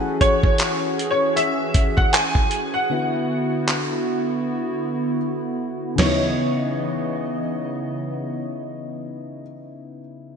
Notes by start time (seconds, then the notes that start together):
Already playing: E3 C#4 F#4 G#4 A4 F#5
0.21 C#5, kick, closed hi-hat
0.43 kick
0.58 clap, closed hi-hat
0.99 closed hi-hat
1.11 C#5
1.36 E5, closed hi-hat
1.74 kick, closed hi-hat
1.97 F#5, kick
2.13 G#5, clap, closed hi-hat
2.35 kick
2.51 closed hi-hat
2.74 F#5
2.90 D3 B3 E4 F#4
3.68 clap
5.96 C#3 E3 B3 C#5 D#5, snare, floor tom, crash
6.01 D#4 E4